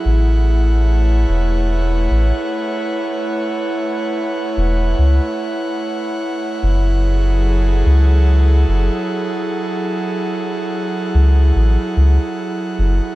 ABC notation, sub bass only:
X:1
M:4/4
L:1/8
Q:"Swing 16ths" 1/4=73
K:A
V:1 name="Sub bass" clef=bass
A,,,3 E,,,2 A,,, z2 | z3 E,,, C,, z3 | F,,,3 C,,2 F,,, z2 | z3 C,, A,,, C,, z F,,, |]